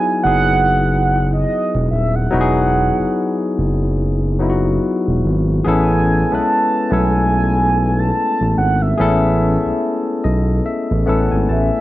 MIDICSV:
0, 0, Header, 1, 4, 480
1, 0, Start_track
1, 0, Key_signature, 4, "major"
1, 0, Tempo, 833333
1, 1331, Time_signature, 4, 2, 24, 8
1, 6801, End_track
2, 0, Start_track
2, 0, Title_t, "Soft synth lead"
2, 0, Program_c, 0, 80
2, 0, Note_on_c, 0, 80, 105
2, 132, Note_off_c, 0, 80, 0
2, 136, Note_on_c, 0, 78, 103
2, 733, Note_off_c, 0, 78, 0
2, 766, Note_on_c, 0, 75, 93
2, 1074, Note_off_c, 0, 75, 0
2, 1100, Note_on_c, 0, 76, 75
2, 1240, Note_on_c, 0, 78, 99
2, 1248, Note_off_c, 0, 76, 0
2, 2197, Note_off_c, 0, 78, 0
2, 3262, Note_on_c, 0, 80, 98
2, 3645, Note_on_c, 0, 81, 101
2, 3654, Note_off_c, 0, 80, 0
2, 3986, Note_on_c, 0, 80, 106
2, 3994, Note_off_c, 0, 81, 0
2, 4604, Note_on_c, 0, 81, 96
2, 4612, Note_off_c, 0, 80, 0
2, 4936, Note_off_c, 0, 81, 0
2, 4942, Note_on_c, 0, 78, 81
2, 5079, Note_on_c, 0, 76, 82
2, 5088, Note_off_c, 0, 78, 0
2, 6036, Note_off_c, 0, 76, 0
2, 6622, Note_on_c, 0, 76, 82
2, 6801, Note_off_c, 0, 76, 0
2, 6801, End_track
3, 0, Start_track
3, 0, Title_t, "Tine electric piano"
3, 0, Program_c, 1, 4
3, 0, Control_c, 1, 64, 127
3, 0, Note_on_c, 1, 54, 55
3, 0, Note_on_c, 1, 59, 57
3, 0, Note_on_c, 1, 63, 49
3, 0, Note_on_c, 1, 64, 56
3, 0, Note_on_c, 1, 68, 94
3, 0, Note_on_c, 1, 71, 59
3, 101, Note_off_c, 1, 54, 0
3, 103, Note_off_c, 1, 59, 0
3, 106, Note_off_c, 1, 63, 0
3, 109, Note_off_c, 1, 64, 0
3, 111, Note_off_c, 1, 71, 0
3, 131, Note_on_c, 1, 54, 65
3, 137, Note_on_c, 1, 59, 54
3, 142, Note_on_c, 1, 63, 57
3, 147, Note_on_c, 1, 64, 55
3, 153, Note_off_c, 1, 68, 0
3, 153, Note_on_c, 1, 68, 77
3, 1011, Note_off_c, 1, 54, 0
3, 1014, Note_off_c, 1, 59, 0
3, 1016, Note_off_c, 1, 63, 0
3, 1019, Note_off_c, 1, 64, 0
3, 1021, Note_off_c, 1, 68, 0
3, 1328, Note_on_c, 1, 54, 94
3, 1333, Note_on_c, 1, 59, 79
3, 1338, Note_on_c, 1, 63, 86
3, 1344, Note_on_c, 1, 64, 73
3, 1350, Note_on_c, 1, 66, 82
3, 1385, Note_off_c, 1, 66, 0
3, 1386, Note_on_c, 1, 68, 97
3, 2209, Note_off_c, 1, 54, 0
3, 2212, Note_off_c, 1, 59, 0
3, 2214, Note_off_c, 1, 63, 0
3, 2217, Note_off_c, 1, 64, 0
3, 2238, Note_off_c, 1, 68, 0
3, 2529, Note_on_c, 1, 54, 66
3, 2535, Note_on_c, 1, 59, 64
3, 2540, Note_on_c, 1, 63, 62
3, 2545, Note_on_c, 1, 64, 66
3, 2550, Note_on_c, 1, 65, 55
3, 2585, Note_off_c, 1, 65, 0
3, 2589, Note_on_c, 1, 66, 77
3, 3189, Note_off_c, 1, 54, 0
3, 3193, Note_off_c, 1, 59, 0
3, 3195, Note_off_c, 1, 63, 0
3, 3197, Note_off_c, 1, 64, 0
3, 3220, Note_off_c, 1, 66, 0
3, 3251, Note_on_c, 1, 68, 84
3, 3258, Note_on_c, 1, 59, 75
3, 3259, Control_c, 1, 64, 0
3, 3263, Note_on_c, 1, 61, 82
3, 3267, Note_on_c, 1, 64, 81
3, 3272, Note_on_c, 1, 69, 100
3, 3344, Control_c, 1, 64, 127
3, 3590, Note_off_c, 1, 68, 0
3, 3593, Note_off_c, 1, 59, 0
3, 3595, Note_off_c, 1, 61, 0
3, 3598, Note_off_c, 1, 64, 0
3, 3600, Note_off_c, 1, 69, 0
3, 3634, Note_on_c, 1, 56, 64
3, 3638, Note_on_c, 1, 59, 61
3, 3643, Note_on_c, 1, 61, 56
3, 3651, Note_on_c, 1, 64, 61
3, 3656, Note_on_c, 1, 71, 74
3, 3941, Note_off_c, 1, 56, 0
3, 3943, Note_off_c, 1, 59, 0
3, 3946, Note_off_c, 1, 61, 0
3, 3950, Note_off_c, 1, 64, 0
3, 3952, Note_off_c, 1, 71, 0
3, 3973, Note_on_c, 1, 57, 67
3, 3977, Note_on_c, 1, 59, 57
3, 3982, Note_on_c, 1, 61, 62
3, 3988, Note_on_c, 1, 64, 61
3, 3992, Note_on_c, 1, 69, 77
3, 4851, Note_off_c, 1, 57, 0
3, 4853, Note_off_c, 1, 59, 0
3, 4856, Note_off_c, 1, 61, 0
3, 4859, Note_off_c, 1, 64, 0
3, 4861, Note_off_c, 1, 69, 0
3, 5170, Note_on_c, 1, 68, 83
3, 5176, Note_on_c, 1, 59, 79
3, 5181, Note_on_c, 1, 61, 83
3, 5186, Note_on_c, 1, 64, 79
3, 5190, Note_on_c, 1, 69, 98
3, 5899, Note_on_c, 1, 75, 64
3, 6050, Note_off_c, 1, 68, 0
3, 6053, Note_off_c, 1, 59, 0
3, 6056, Note_off_c, 1, 61, 0
3, 6058, Note_off_c, 1, 64, 0
3, 6060, Note_off_c, 1, 69, 0
3, 6119, Note_off_c, 1, 75, 0
3, 6139, Note_on_c, 1, 76, 65
3, 6358, Note_off_c, 1, 76, 0
3, 6369, Note_on_c, 1, 57, 75
3, 6374, Note_on_c, 1, 59, 70
3, 6379, Note_on_c, 1, 61, 60
3, 6380, Note_on_c, 1, 78, 61
3, 6384, Note_on_c, 1, 64, 58
3, 6389, Note_on_c, 1, 69, 80
3, 6508, Note_off_c, 1, 78, 0
3, 6518, Note_on_c, 1, 80, 57
3, 6607, Note_off_c, 1, 80, 0
3, 6619, Note_on_c, 1, 81, 60
3, 6801, Note_off_c, 1, 57, 0
3, 6801, Note_off_c, 1, 59, 0
3, 6801, Note_off_c, 1, 61, 0
3, 6801, Note_off_c, 1, 64, 0
3, 6801, Note_off_c, 1, 69, 0
3, 6801, Note_off_c, 1, 81, 0
3, 6801, End_track
4, 0, Start_track
4, 0, Title_t, "Analog synth bass"
4, 0, Program_c, 2, 38
4, 145, Note_on_c, 2, 30, 90
4, 835, Note_off_c, 2, 30, 0
4, 1007, Note_on_c, 2, 28, 75
4, 1087, Note_off_c, 2, 28, 0
4, 1104, Note_on_c, 2, 27, 78
4, 1310, Note_off_c, 2, 27, 0
4, 1346, Note_on_c, 2, 28, 105
4, 1676, Note_off_c, 2, 28, 0
4, 1727, Note_on_c, 2, 30, 38
4, 1763, Note_off_c, 2, 30, 0
4, 2065, Note_on_c, 2, 30, 83
4, 2755, Note_off_c, 2, 30, 0
4, 2927, Note_on_c, 2, 28, 83
4, 3007, Note_off_c, 2, 28, 0
4, 3024, Note_on_c, 2, 32, 85
4, 3229, Note_off_c, 2, 32, 0
4, 3263, Note_on_c, 2, 33, 96
4, 3595, Note_off_c, 2, 33, 0
4, 3646, Note_on_c, 2, 35, 40
4, 3682, Note_off_c, 2, 35, 0
4, 3984, Note_on_c, 2, 35, 97
4, 4675, Note_off_c, 2, 35, 0
4, 4845, Note_on_c, 2, 33, 80
4, 4926, Note_off_c, 2, 33, 0
4, 4941, Note_on_c, 2, 32, 84
4, 5148, Note_off_c, 2, 32, 0
4, 5183, Note_on_c, 2, 33, 105
4, 5514, Note_off_c, 2, 33, 0
4, 5564, Note_on_c, 2, 35, 36
4, 5600, Note_off_c, 2, 35, 0
4, 5904, Note_on_c, 2, 35, 92
4, 6109, Note_off_c, 2, 35, 0
4, 6285, Note_on_c, 2, 33, 92
4, 6366, Note_off_c, 2, 33, 0
4, 6383, Note_on_c, 2, 33, 89
4, 6503, Note_off_c, 2, 33, 0
4, 6525, Note_on_c, 2, 32, 78
4, 6606, Note_off_c, 2, 32, 0
4, 6624, Note_on_c, 2, 33, 94
4, 6744, Note_off_c, 2, 33, 0
4, 6801, End_track
0, 0, End_of_file